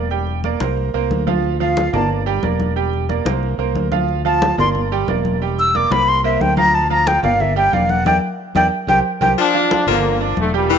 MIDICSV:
0, 0, Header, 1, 7, 480
1, 0, Start_track
1, 0, Key_signature, -1, "minor"
1, 0, Tempo, 330943
1, 160, Time_signature, 4, 2, 24, 8
1, 15643, End_track
2, 0, Start_track
2, 0, Title_t, "Flute"
2, 0, Program_c, 0, 73
2, 2336, Note_on_c, 0, 77, 87
2, 2777, Note_off_c, 0, 77, 0
2, 2816, Note_on_c, 0, 81, 88
2, 3034, Note_off_c, 0, 81, 0
2, 6178, Note_on_c, 0, 81, 94
2, 6619, Note_off_c, 0, 81, 0
2, 6666, Note_on_c, 0, 84, 104
2, 6804, Note_off_c, 0, 84, 0
2, 8112, Note_on_c, 0, 88, 104
2, 8355, Note_on_c, 0, 86, 99
2, 8377, Note_off_c, 0, 88, 0
2, 8582, Note_on_c, 0, 83, 108
2, 8604, Note_off_c, 0, 86, 0
2, 8826, Note_on_c, 0, 84, 111
2, 8848, Note_off_c, 0, 83, 0
2, 9056, Note_off_c, 0, 84, 0
2, 9065, Note_on_c, 0, 76, 80
2, 9300, Note_on_c, 0, 79, 94
2, 9322, Note_off_c, 0, 76, 0
2, 9522, Note_off_c, 0, 79, 0
2, 9531, Note_on_c, 0, 82, 125
2, 9786, Note_on_c, 0, 81, 101
2, 9808, Note_off_c, 0, 82, 0
2, 10016, Note_off_c, 0, 81, 0
2, 10025, Note_on_c, 0, 82, 113
2, 10258, Note_on_c, 0, 79, 101
2, 10280, Note_off_c, 0, 82, 0
2, 10487, Note_off_c, 0, 79, 0
2, 10496, Note_on_c, 0, 77, 90
2, 10746, Note_on_c, 0, 76, 86
2, 10768, Note_off_c, 0, 77, 0
2, 10970, Note_off_c, 0, 76, 0
2, 10979, Note_on_c, 0, 79, 110
2, 11220, Note_on_c, 0, 77, 96
2, 11241, Note_off_c, 0, 79, 0
2, 11459, Note_on_c, 0, 78, 97
2, 11481, Note_off_c, 0, 77, 0
2, 11693, Note_off_c, 0, 78, 0
2, 11700, Note_on_c, 0, 79, 93
2, 11848, Note_off_c, 0, 79, 0
2, 12421, Note_on_c, 0, 79, 106
2, 12568, Note_off_c, 0, 79, 0
2, 12894, Note_on_c, 0, 79, 100
2, 13044, Note_off_c, 0, 79, 0
2, 13368, Note_on_c, 0, 79, 93
2, 13520, Note_off_c, 0, 79, 0
2, 15643, End_track
3, 0, Start_track
3, 0, Title_t, "Grand piano"
3, 0, Program_c, 1, 0
3, 157, Note_on_c, 1, 55, 72
3, 161, Note_on_c, 1, 67, 74
3, 161, Note_on_c, 1, 79, 84
3, 552, Note_off_c, 1, 55, 0
3, 555, Note_off_c, 1, 67, 0
3, 555, Note_off_c, 1, 79, 0
3, 642, Note_on_c, 1, 58, 73
3, 649, Note_on_c, 1, 70, 79
3, 653, Note_on_c, 1, 74, 75
3, 838, Note_off_c, 1, 58, 0
3, 842, Note_off_c, 1, 70, 0
3, 845, Note_off_c, 1, 74, 0
3, 881, Note_on_c, 1, 58, 75
3, 884, Note_on_c, 1, 70, 81
3, 889, Note_on_c, 1, 72, 78
3, 1275, Note_off_c, 1, 58, 0
3, 1277, Note_off_c, 1, 70, 0
3, 1280, Note_off_c, 1, 72, 0
3, 1366, Note_on_c, 1, 58, 85
3, 1367, Note_on_c, 1, 70, 87
3, 1377, Note_on_c, 1, 72, 84
3, 1758, Note_off_c, 1, 58, 0
3, 1759, Note_off_c, 1, 70, 0
3, 1765, Note_off_c, 1, 72, 0
3, 1841, Note_on_c, 1, 53, 97
3, 1844, Note_on_c, 1, 65, 91
3, 1848, Note_on_c, 1, 77, 90
3, 2236, Note_off_c, 1, 53, 0
3, 2237, Note_off_c, 1, 65, 0
3, 2240, Note_off_c, 1, 77, 0
3, 2325, Note_on_c, 1, 53, 94
3, 2332, Note_on_c, 1, 65, 89
3, 2334, Note_on_c, 1, 77, 92
3, 2718, Note_off_c, 1, 53, 0
3, 2722, Note_off_c, 1, 65, 0
3, 2724, Note_off_c, 1, 77, 0
3, 2801, Note_on_c, 1, 58, 84
3, 2809, Note_on_c, 1, 70, 82
3, 2810, Note_on_c, 1, 74, 86
3, 3196, Note_off_c, 1, 58, 0
3, 3201, Note_off_c, 1, 70, 0
3, 3202, Note_off_c, 1, 74, 0
3, 3280, Note_on_c, 1, 55, 95
3, 3283, Note_on_c, 1, 67, 97
3, 3290, Note_on_c, 1, 79, 93
3, 3479, Note_off_c, 1, 55, 0
3, 3481, Note_off_c, 1, 67, 0
3, 3485, Note_off_c, 1, 79, 0
3, 3524, Note_on_c, 1, 58, 73
3, 3527, Note_on_c, 1, 70, 76
3, 3533, Note_on_c, 1, 74, 76
3, 3918, Note_off_c, 1, 58, 0
3, 3920, Note_off_c, 1, 70, 0
3, 3924, Note_off_c, 1, 74, 0
3, 4003, Note_on_c, 1, 55, 81
3, 4009, Note_on_c, 1, 67, 84
3, 4009, Note_on_c, 1, 79, 86
3, 4397, Note_off_c, 1, 55, 0
3, 4401, Note_off_c, 1, 67, 0
3, 4401, Note_off_c, 1, 79, 0
3, 4483, Note_on_c, 1, 58, 73
3, 4488, Note_on_c, 1, 70, 75
3, 4491, Note_on_c, 1, 74, 74
3, 4681, Note_off_c, 1, 58, 0
3, 4684, Note_off_c, 1, 70, 0
3, 4686, Note_off_c, 1, 74, 0
3, 4722, Note_on_c, 1, 58, 80
3, 4728, Note_on_c, 1, 70, 77
3, 4730, Note_on_c, 1, 72, 77
3, 5117, Note_off_c, 1, 58, 0
3, 5121, Note_off_c, 1, 70, 0
3, 5122, Note_off_c, 1, 72, 0
3, 5202, Note_on_c, 1, 58, 81
3, 5204, Note_on_c, 1, 70, 80
3, 5211, Note_on_c, 1, 72, 77
3, 5598, Note_off_c, 1, 58, 0
3, 5599, Note_off_c, 1, 70, 0
3, 5603, Note_off_c, 1, 72, 0
3, 5681, Note_on_c, 1, 53, 82
3, 5686, Note_on_c, 1, 65, 91
3, 5690, Note_on_c, 1, 77, 91
3, 6077, Note_off_c, 1, 53, 0
3, 6080, Note_off_c, 1, 65, 0
3, 6082, Note_off_c, 1, 77, 0
3, 6163, Note_on_c, 1, 53, 100
3, 6169, Note_on_c, 1, 65, 96
3, 6175, Note_on_c, 1, 77, 94
3, 6558, Note_off_c, 1, 53, 0
3, 6562, Note_off_c, 1, 65, 0
3, 6565, Note_off_c, 1, 77, 0
3, 6645, Note_on_c, 1, 58, 78
3, 6654, Note_on_c, 1, 70, 86
3, 6655, Note_on_c, 1, 74, 79
3, 7039, Note_off_c, 1, 58, 0
3, 7044, Note_off_c, 1, 70, 0
3, 7045, Note_off_c, 1, 74, 0
3, 7135, Note_on_c, 1, 55, 94
3, 7135, Note_on_c, 1, 67, 98
3, 7141, Note_on_c, 1, 79, 92
3, 7328, Note_off_c, 1, 67, 0
3, 7329, Note_off_c, 1, 55, 0
3, 7332, Note_off_c, 1, 79, 0
3, 7373, Note_on_c, 1, 58, 76
3, 7376, Note_on_c, 1, 70, 78
3, 7380, Note_on_c, 1, 74, 75
3, 7764, Note_off_c, 1, 58, 0
3, 7766, Note_off_c, 1, 70, 0
3, 7768, Note_off_c, 1, 74, 0
3, 7856, Note_on_c, 1, 55, 81
3, 7859, Note_on_c, 1, 67, 81
3, 7861, Note_on_c, 1, 79, 73
3, 8246, Note_off_c, 1, 55, 0
3, 8248, Note_off_c, 1, 67, 0
3, 8249, Note_off_c, 1, 79, 0
3, 8336, Note_on_c, 1, 58, 81
3, 8338, Note_on_c, 1, 70, 78
3, 8344, Note_on_c, 1, 74, 71
3, 8529, Note_off_c, 1, 58, 0
3, 8531, Note_off_c, 1, 70, 0
3, 8534, Note_off_c, 1, 74, 0
3, 8570, Note_on_c, 1, 58, 85
3, 8574, Note_on_c, 1, 70, 76
3, 8578, Note_on_c, 1, 72, 78
3, 8963, Note_off_c, 1, 58, 0
3, 8965, Note_off_c, 1, 70, 0
3, 8967, Note_off_c, 1, 72, 0
3, 9054, Note_on_c, 1, 70, 87
3, 9055, Note_on_c, 1, 58, 87
3, 9062, Note_on_c, 1, 72, 86
3, 9445, Note_off_c, 1, 58, 0
3, 9445, Note_off_c, 1, 70, 0
3, 9449, Note_off_c, 1, 72, 0
3, 9534, Note_on_c, 1, 53, 96
3, 9537, Note_on_c, 1, 65, 87
3, 9542, Note_on_c, 1, 77, 94
3, 9925, Note_off_c, 1, 53, 0
3, 9927, Note_off_c, 1, 65, 0
3, 9929, Note_off_c, 1, 77, 0
3, 10012, Note_on_c, 1, 53, 90
3, 10017, Note_on_c, 1, 65, 102
3, 10021, Note_on_c, 1, 77, 101
3, 10403, Note_off_c, 1, 53, 0
3, 10406, Note_off_c, 1, 65, 0
3, 10409, Note_off_c, 1, 77, 0
3, 10491, Note_on_c, 1, 58, 84
3, 10494, Note_on_c, 1, 70, 79
3, 10499, Note_on_c, 1, 74, 80
3, 10883, Note_off_c, 1, 58, 0
3, 10885, Note_off_c, 1, 70, 0
3, 10887, Note_off_c, 1, 74, 0
3, 10966, Note_on_c, 1, 55, 92
3, 10971, Note_on_c, 1, 67, 97
3, 10976, Note_on_c, 1, 79, 93
3, 11163, Note_off_c, 1, 55, 0
3, 11166, Note_off_c, 1, 67, 0
3, 11169, Note_off_c, 1, 79, 0
3, 11203, Note_on_c, 1, 58, 74
3, 11213, Note_on_c, 1, 70, 81
3, 11216, Note_on_c, 1, 74, 78
3, 11598, Note_off_c, 1, 58, 0
3, 11603, Note_off_c, 1, 70, 0
3, 11605, Note_off_c, 1, 74, 0
3, 11691, Note_on_c, 1, 74, 95
3, 11694, Note_on_c, 1, 70, 91
3, 11694, Note_on_c, 1, 76, 88
3, 11842, Note_off_c, 1, 74, 0
3, 11844, Note_off_c, 1, 70, 0
3, 11845, Note_off_c, 1, 76, 0
3, 12412, Note_on_c, 1, 70, 95
3, 12412, Note_on_c, 1, 74, 103
3, 12414, Note_on_c, 1, 76, 100
3, 12563, Note_off_c, 1, 70, 0
3, 12563, Note_off_c, 1, 74, 0
3, 12564, Note_off_c, 1, 76, 0
3, 12883, Note_on_c, 1, 67, 96
3, 12884, Note_on_c, 1, 70, 96
3, 12884, Note_on_c, 1, 72, 99
3, 13037, Note_off_c, 1, 67, 0
3, 13038, Note_off_c, 1, 70, 0
3, 13038, Note_off_c, 1, 72, 0
3, 13358, Note_on_c, 1, 70, 106
3, 13361, Note_on_c, 1, 72, 93
3, 13362, Note_on_c, 1, 67, 94
3, 13514, Note_off_c, 1, 70, 0
3, 13515, Note_off_c, 1, 72, 0
3, 13516, Note_off_c, 1, 67, 0
3, 13839, Note_on_c, 1, 53, 96
3, 13847, Note_on_c, 1, 65, 101
3, 13849, Note_on_c, 1, 77, 90
3, 14234, Note_off_c, 1, 53, 0
3, 14239, Note_off_c, 1, 65, 0
3, 14240, Note_off_c, 1, 77, 0
3, 14326, Note_on_c, 1, 58, 80
3, 14328, Note_on_c, 1, 70, 84
3, 14334, Note_on_c, 1, 82, 76
3, 14717, Note_off_c, 1, 58, 0
3, 14719, Note_off_c, 1, 70, 0
3, 14722, Note_off_c, 1, 82, 0
3, 14802, Note_on_c, 1, 62, 82
3, 14808, Note_on_c, 1, 74, 81
3, 14809, Note_on_c, 1, 86, 85
3, 15195, Note_off_c, 1, 62, 0
3, 15198, Note_off_c, 1, 74, 0
3, 15199, Note_off_c, 1, 86, 0
3, 15285, Note_on_c, 1, 55, 95
3, 15288, Note_on_c, 1, 67, 95
3, 15293, Note_on_c, 1, 79, 92
3, 15480, Note_off_c, 1, 55, 0
3, 15481, Note_off_c, 1, 67, 0
3, 15484, Note_off_c, 1, 79, 0
3, 15526, Note_on_c, 1, 55, 85
3, 15527, Note_on_c, 1, 67, 86
3, 15534, Note_on_c, 1, 79, 84
3, 15643, Note_off_c, 1, 55, 0
3, 15643, Note_off_c, 1, 67, 0
3, 15643, Note_off_c, 1, 79, 0
3, 15643, End_track
4, 0, Start_track
4, 0, Title_t, "Trombone section"
4, 0, Program_c, 2, 61
4, 13614, Note_on_c, 2, 62, 117
4, 13619, Note_on_c, 2, 53, 84
4, 14277, Note_off_c, 2, 62, 0
4, 14281, Note_off_c, 2, 53, 0
4, 14330, Note_on_c, 2, 58, 96
4, 14338, Note_on_c, 2, 50, 75
4, 14772, Note_off_c, 2, 58, 0
4, 14776, Note_off_c, 2, 50, 0
4, 15066, Note_on_c, 2, 57, 88
4, 15072, Note_on_c, 2, 50, 72
4, 15277, Note_off_c, 2, 57, 0
4, 15280, Note_off_c, 2, 50, 0
4, 15307, Note_on_c, 2, 55, 88
4, 15317, Note_on_c, 2, 46, 69
4, 15643, Note_off_c, 2, 46, 0
4, 15643, Note_off_c, 2, 55, 0
4, 15643, End_track
5, 0, Start_track
5, 0, Title_t, "Baritone saxophone"
5, 0, Program_c, 3, 67
5, 13604, Note_on_c, 3, 53, 96
5, 13991, Note_off_c, 3, 53, 0
5, 14322, Note_on_c, 3, 53, 86
5, 15044, Note_off_c, 3, 53, 0
5, 15513, Note_on_c, 3, 52, 89
5, 15643, Note_off_c, 3, 52, 0
5, 15643, End_track
6, 0, Start_track
6, 0, Title_t, "Fingered electric bass"
6, 0, Program_c, 4, 33
6, 0, Note_on_c, 4, 28, 86
6, 797, Note_off_c, 4, 28, 0
6, 873, Note_on_c, 4, 36, 102
6, 1324, Note_off_c, 4, 36, 0
6, 1358, Note_on_c, 4, 36, 75
6, 1583, Note_off_c, 4, 36, 0
6, 1600, Note_on_c, 4, 38, 93
6, 2721, Note_off_c, 4, 38, 0
6, 2801, Note_on_c, 4, 31, 109
6, 3473, Note_off_c, 4, 31, 0
6, 3518, Note_on_c, 4, 28, 90
6, 4640, Note_off_c, 4, 28, 0
6, 4717, Note_on_c, 4, 36, 104
6, 5167, Note_off_c, 4, 36, 0
6, 5189, Note_on_c, 4, 36, 69
6, 5420, Note_off_c, 4, 36, 0
6, 5432, Note_on_c, 4, 38, 88
6, 6558, Note_off_c, 4, 38, 0
6, 6637, Note_on_c, 4, 31, 98
6, 7311, Note_off_c, 4, 31, 0
6, 7358, Note_on_c, 4, 28, 90
6, 8481, Note_off_c, 4, 28, 0
6, 8562, Note_on_c, 4, 36, 103
6, 9234, Note_off_c, 4, 36, 0
6, 9277, Note_on_c, 4, 38, 94
6, 10400, Note_off_c, 4, 38, 0
6, 10483, Note_on_c, 4, 31, 105
6, 11154, Note_off_c, 4, 31, 0
6, 11205, Note_on_c, 4, 28, 96
6, 11652, Note_off_c, 4, 28, 0
6, 11676, Note_on_c, 4, 40, 103
6, 11859, Note_off_c, 4, 40, 0
6, 12397, Note_on_c, 4, 40, 106
6, 12579, Note_off_c, 4, 40, 0
6, 12868, Note_on_c, 4, 36, 97
6, 13054, Note_off_c, 4, 36, 0
6, 13351, Note_on_c, 4, 36, 88
6, 13536, Note_off_c, 4, 36, 0
6, 14307, Note_on_c, 4, 31, 101
6, 14982, Note_off_c, 4, 31, 0
6, 15038, Note_on_c, 4, 28, 95
6, 15643, Note_off_c, 4, 28, 0
6, 15643, End_track
7, 0, Start_track
7, 0, Title_t, "Drums"
7, 153, Note_on_c, 9, 63, 40
7, 298, Note_off_c, 9, 63, 0
7, 389, Note_on_c, 9, 63, 36
7, 534, Note_off_c, 9, 63, 0
7, 636, Note_on_c, 9, 63, 68
7, 781, Note_off_c, 9, 63, 0
7, 875, Note_on_c, 9, 63, 95
7, 1020, Note_off_c, 9, 63, 0
7, 1121, Note_on_c, 9, 63, 34
7, 1266, Note_off_c, 9, 63, 0
7, 1359, Note_on_c, 9, 63, 38
7, 1504, Note_off_c, 9, 63, 0
7, 1607, Note_on_c, 9, 63, 81
7, 1752, Note_off_c, 9, 63, 0
7, 1851, Note_on_c, 9, 63, 88
7, 1996, Note_off_c, 9, 63, 0
7, 2092, Note_on_c, 9, 63, 39
7, 2237, Note_off_c, 9, 63, 0
7, 2331, Note_on_c, 9, 63, 39
7, 2476, Note_off_c, 9, 63, 0
7, 2566, Note_on_c, 9, 63, 108
7, 2711, Note_off_c, 9, 63, 0
7, 2809, Note_on_c, 9, 63, 36
7, 2809, Note_on_c, 9, 64, 88
7, 2954, Note_off_c, 9, 63, 0
7, 2954, Note_off_c, 9, 64, 0
7, 3044, Note_on_c, 9, 63, 33
7, 3189, Note_off_c, 9, 63, 0
7, 3292, Note_on_c, 9, 63, 38
7, 3437, Note_off_c, 9, 63, 0
7, 3522, Note_on_c, 9, 63, 91
7, 3667, Note_off_c, 9, 63, 0
7, 3766, Note_on_c, 9, 63, 75
7, 3911, Note_off_c, 9, 63, 0
7, 4012, Note_on_c, 9, 63, 39
7, 4157, Note_off_c, 9, 63, 0
7, 4255, Note_on_c, 9, 63, 35
7, 4400, Note_off_c, 9, 63, 0
7, 4487, Note_on_c, 9, 63, 65
7, 4632, Note_off_c, 9, 63, 0
7, 4730, Note_on_c, 9, 63, 104
7, 4875, Note_off_c, 9, 63, 0
7, 4975, Note_on_c, 9, 63, 35
7, 5120, Note_off_c, 9, 63, 0
7, 5208, Note_on_c, 9, 63, 37
7, 5353, Note_off_c, 9, 63, 0
7, 5446, Note_on_c, 9, 63, 83
7, 5591, Note_off_c, 9, 63, 0
7, 5681, Note_on_c, 9, 63, 93
7, 5826, Note_off_c, 9, 63, 0
7, 5923, Note_on_c, 9, 63, 40
7, 6068, Note_off_c, 9, 63, 0
7, 6169, Note_on_c, 9, 63, 36
7, 6314, Note_off_c, 9, 63, 0
7, 6409, Note_on_c, 9, 63, 111
7, 6554, Note_off_c, 9, 63, 0
7, 6648, Note_on_c, 9, 63, 38
7, 6648, Note_on_c, 9, 64, 85
7, 6793, Note_off_c, 9, 63, 0
7, 6793, Note_off_c, 9, 64, 0
7, 6887, Note_on_c, 9, 63, 31
7, 6887, Note_on_c, 9, 64, 65
7, 7032, Note_off_c, 9, 63, 0
7, 7032, Note_off_c, 9, 64, 0
7, 7126, Note_on_c, 9, 63, 37
7, 7271, Note_off_c, 9, 63, 0
7, 7368, Note_on_c, 9, 63, 84
7, 7513, Note_off_c, 9, 63, 0
7, 7612, Note_on_c, 9, 63, 71
7, 7757, Note_off_c, 9, 63, 0
7, 7853, Note_on_c, 9, 63, 39
7, 7998, Note_off_c, 9, 63, 0
7, 8099, Note_on_c, 9, 63, 39
7, 8244, Note_off_c, 9, 63, 0
7, 8341, Note_on_c, 9, 63, 66
7, 8486, Note_off_c, 9, 63, 0
7, 8580, Note_on_c, 9, 63, 97
7, 8725, Note_off_c, 9, 63, 0
7, 8821, Note_on_c, 9, 63, 33
7, 8966, Note_off_c, 9, 63, 0
7, 9057, Note_on_c, 9, 63, 37
7, 9202, Note_off_c, 9, 63, 0
7, 9300, Note_on_c, 9, 63, 90
7, 9445, Note_off_c, 9, 63, 0
7, 9529, Note_on_c, 9, 63, 91
7, 9674, Note_off_c, 9, 63, 0
7, 9775, Note_on_c, 9, 63, 38
7, 9920, Note_off_c, 9, 63, 0
7, 10014, Note_on_c, 9, 63, 38
7, 10159, Note_off_c, 9, 63, 0
7, 10253, Note_on_c, 9, 63, 102
7, 10398, Note_off_c, 9, 63, 0
7, 10499, Note_on_c, 9, 63, 38
7, 10499, Note_on_c, 9, 64, 91
7, 10644, Note_off_c, 9, 63, 0
7, 10644, Note_off_c, 9, 64, 0
7, 10735, Note_on_c, 9, 63, 32
7, 10735, Note_on_c, 9, 64, 68
7, 10880, Note_off_c, 9, 63, 0
7, 10880, Note_off_c, 9, 64, 0
7, 10973, Note_on_c, 9, 63, 34
7, 11118, Note_off_c, 9, 63, 0
7, 11214, Note_on_c, 9, 63, 91
7, 11359, Note_off_c, 9, 63, 0
7, 11446, Note_on_c, 9, 63, 76
7, 11591, Note_off_c, 9, 63, 0
7, 11690, Note_on_c, 9, 63, 108
7, 11835, Note_off_c, 9, 63, 0
7, 12408, Note_on_c, 9, 63, 105
7, 12553, Note_off_c, 9, 63, 0
7, 12889, Note_on_c, 9, 63, 104
7, 13034, Note_off_c, 9, 63, 0
7, 13371, Note_on_c, 9, 63, 106
7, 13516, Note_off_c, 9, 63, 0
7, 13612, Note_on_c, 9, 63, 40
7, 13757, Note_off_c, 9, 63, 0
7, 13844, Note_on_c, 9, 63, 38
7, 13989, Note_off_c, 9, 63, 0
7, 14086, Note_on_c, 9, 63, 113
7, 14231, Note_off_c, 9, 63, 0
7, 14332, Note_on_c, 9, 63, 38
7, 14332, Note_on_c, 9, 64, 84
7, 14477, Note_off_c, 9, 63, 0
7, 14477, Note_off_c, 9, 64, 0
7, 14561, Note_on_c, 9, 63, 34
7, 14706, Note_off_c, 9, 63, 0
7, 14804, Note_on_c, 9, 63, 39
7, 14949, Note_off_c, 9, 63, 0
7, 15041, Note_on_c, 9, 63, 84
7, 15186, Note_off_c, 9, 63, 0
7, 15523, Note_on_c, 9, 63, 40
7, 15643, Note_off_c, 9, 63, 0
7, 15643, End_track
0, 0, End_of_file